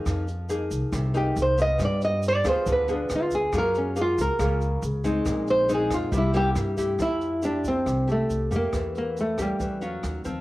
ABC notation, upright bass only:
X:1
M:4/4
L:1/16
Q:1/4=138
K:Cm
V:1 name="Upright bass" clef=bass
F,,6 C,, z C,,4 C,,4 | G,,6 D,, z D,,4 D,,4 | _G,,6 _D,, z D,,4 D,,4 | B,,,6 F,, z C,,4 G,,4 |
[K:F] F,,8 C,,4 C,,2 F,,2 | E,,8 E,,4 _E,,2 E,,2 |]